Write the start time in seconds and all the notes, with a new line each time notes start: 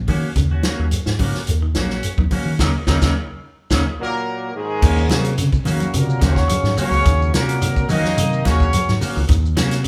0.08 D#3 A#3 C#4 F#4, kick, open hi-hat, high conga, low conga, shekere
0.36 D#2 C#3, kick, closed hi-hat, low conga, shekere
0.51 C#4 F#4
0.63 D#3 A#3 C#4 F#4, snare, closed hi-hat, high conga, shekere
0.79 D#2 F#3
0.91 closed hi-hat, shekere
1.06 G#2, snare
1.19 C#3 A#3 C#4 F#4, kick, open hi-hat, high conga, shekere
1.34 muted fingered electric bass stroke, snare
1.47 D#2, closed hi-hat, shekere
1.62 D#3
1.75 A#1 F#3 A#3 C#4 F#4, snare, closed hi-hat, high conga, shekere
1.90 C#4 F#4, snare
2.03 muted fingered electric bass stroke, closed hi-hat, shekere
2.18 D#2 D#3, kick, high conga
2.31 A#3 C#4 F#4, kick, open hi-hat, high conga, low conga, shekere
2.45 D#3
2.59 D#2 C#3 D#3 F#3 A#3 C#4 D#4, kick, snare, low conga, shekere
2.87 D#2 C#3 D#3 F#3 A#3 C#4 D#4, kick, snare, low conga, shekere
3.02 D#2 C#3 D#3 F#3 A#3 C#4 D#4, kick, snare, low conga, shekere
3.70 D#2 C#3 D#3 F#3 A#3 C#4 D#4, kick, snare, low conga, shekere
3.99 A#2 F#3 A#3 A#4
4.54 G#2 D#3 G#3 G#4
4.82 D#2 D#3 A#3 C#4, muted clean electric guitar stroke, kick, crash, high conga, shekere
4.98 shekere
5.10 C3 F#3 A#3 C#4 F#4, snare, closed hi-hat, high conga, shekere
5.25 closed hi-hat, shekere
5.38 C#3, closed hi-hat, high conga, shekere
5.53 kick, low conga, shekere
5.65 D#3 A#3 C#4 F#4, open hi-hat, high conga, low conga, shekere
5.70 F#2 C#3 F#3 F#4
5.80 closed hi-hat, high conga, shekere
5.94 A#2 C3 C#3 A#3 A#4, closed hi-hat, shekere
5.99 F#3
6.10 shekere
6.21 D#2 C#3 A#3 C#4 F#4 C#5, kick, snare, closed hi-hat, high conga, shekere
6.26 F#3
6.36 kick, snare, shekere
6.48 F3, closed hi-hat, high conga, shekere
6.63 G#2, snare, high conga, shekere
6.77 C#3 F#3 A#3 C#4 F#4 C#5, muted fingered electric bass stroke, open hi-hat, low conga, shekere
6.82 F#3
6.91 C#2, shekere
7.05 D#2 D#3, kick, closed hi-hat, high conga, shekere
7.22 shekere
7.33 A#2 C3 F#3 A#3 C#4 F#4 A#4, snare, closed hi-hat, high conga, shekere
7.49 closed hi-hat, shekere
7.62 D#3, closed hi-hat, high conga, shekere
7.76 kick, low conga, shekere
7.89 D#3 F#3 A#3 C#4 D#4 F#4 D#5, open hi-hat, high conga, low conga, shekere
8.04 C#4, snare, high conga, shekere
8.17 C3 F#3, closed hi-hat, high conga, shekere
8.33 shekere
8.45 D#2 C#3 F3 F#3 A#3 C#4 F#4 C#5, kick, snare, closed hi-hat, high conga, shekere
8.60 kick, shekere
8.73 closed hi-hat, high conga, shekere
8.88 G#2, snare, high conga, shekere
9.01 A#3 C#4 F#4, muted fingered electric bass stroke, open hi-hat, low conga, shekere
9.16 C#2 D#3, shekere
9.28 D#2 D#3, kick, closed hi-hat, high conga, shekere
9.46 shekere
9.57 C3 F#3 A#3 C#4 F#4, snare, closed hi-hat, high conga, shekere
9.71 snare, closed hi-hat, shekere
9.84 C#3, closed hi-hat